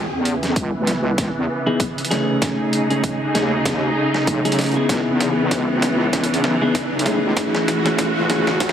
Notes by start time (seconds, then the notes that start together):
Already playing: C#3 E3 B3, riser
0.12 E2
0.25 closed hi-hat
0.43 snare, closed hi-hat
0.56 C#2, kick, closed hi-hat
0.87 snare, closed hi-hat
1.18 C#2, kick, snare, closed hi-hat
1.36 E2
1.66 B3 D#4 E4 G#4
1.80 kick, closed hi-hat
1.98 closed hi-hat
2.05 closed hi-hat
2.11 A3 C#4 D#4 G#4, snare, closed hi-hat
2.42 A3 D#4 G#4, kick, snare, closed hi-hat
2.73 closed hi-hat
2.90 A3 C#4 D#4 G#4, closed hi-hat
3.04 kick, closed hi-hat
3.35 D#2 A3 C#4 D#4 G#4, snare, closed hi-hat
3.65 kick, snare, closed hi-hat
4.14 snare
4.27 B1, kick, closed hi-hat
4.45 A3 C#4 D#4 G#4, closed hi-hat
4.52 closed hi-hat
4.59 snare, closed hi-hat
4.61 closed hi-hat
4.64 closed hi-hat
4.66 closed hi-hat
4.69 closed hi-hat
4.71 closed hi-hat
4.74 B3 D#4 E4 G#4, closed hi-hat
4.89 C#2 E3 B3, kick, snare, closed hi-hat
5.07 E2
5.20 snare, closed hi-hat
5.51 C#2, kick, snare, closed hi-hat
5.82 snare, closed hi-hat
6.13 C#2, kick, snare, closed hi-hat
6.24 closed hi-hat
6.30 E2, closed hi-hat
6.44 B1, snare
6.61 B3 D#4 E4 G#4
6.75 kick, snare, closed hi-hat
6.92 B1
6.99 closed hi-hat
7.05 A3 C#4 E4 G#4, snare, closed hi-hat
7.23 C#2
7.37 E3 A3 F#4, kick, snare, closed hi-hat
7.55 snare
7.68 snare, closed hi-hat
7.85 A3 C#4 E4 G#4, snare, closed hi-hat
7.99 kick, snare, closed hi-hat
8.16 F#1
8.30 A3 C#4 E4 G#4, snare, closed hi-hat
8.47 F#1, snare
8.60 E1, kick, snare, closed hi-hat
8.69 snare